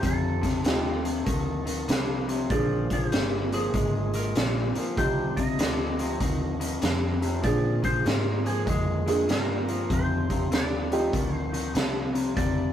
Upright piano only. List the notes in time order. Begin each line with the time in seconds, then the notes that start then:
0.67 A3 C4 D#4 F4 G4
2.51 A#3 C4 D4 F4 G#4
4.97 A3 C4 D#4 F4 G4
7.43 A#3 C4 D4 F4 G#4
9.08 A#3 C4 D4 F4 G#4
10.92 A3 C4 D#4 F4 G4